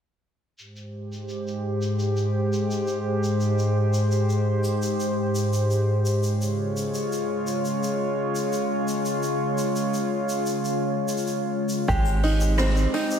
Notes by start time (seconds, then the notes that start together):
0.58 G#2 G#3 G4 C5, shaker
0.76 shaker
1.12 shaker
1.29 shaker
1.48 shaker
1.82 shaker
1.99 shaker
2.17 shaker
2.53 shaker
2.71 shaker
2.87 shaker
3.24 shaker
3.40 shaker
3.59 shaker
3.94 shaker
4.12 shaker
4.29 shaker
4.64 shaker
4.82 shaker
5.00 shaker
5.35 shaker
5.53 shaker
5.71 shaker
6.06 shaker
6.22 C#3 G#3 F4 C#5, shaker
6.42 shaker
6.77 shaker
6.94 shaker
7.12 shaker
7.47 shaker
7.65 shaker
7.83 shaker
8.36 shaker
8.53 shaker
8.88 shaker
9.06 shaker
9.23 shaker
9.58 shaker
9.76 shaker
9.94 shaker
10.29 shaker
10.46 shaker
10.65 shaker
11.09 shaker
11.17 shaker
11.27 shaker
11.69 shaker
11.88 G#1 G#3 C4 G4, kick, shaker
12.05 shaker
12.23 D#4, open hi-hat
12.41 shaker
12.58 C4, cross-stick, shaker
12.76 shaker
12.94 D#4, open hi-hat
13.11 shaker